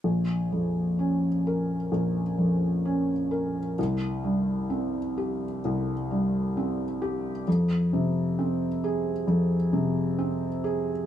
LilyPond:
\new Staff \with { instrumentName = "Felt piano" } { \clef bass \time 4/4 \key bes \minor \tempo 4 = 65 bes,,8 f,8 des'8 bes'8 bes,,8 f,8 des'8 bes'8 | c,8 g,8 c'8 g'8 c,8 g,8 c'8 g'8 | f,8 c8 c'8 aes'8 f,8 c8 c'8 aes'8 | }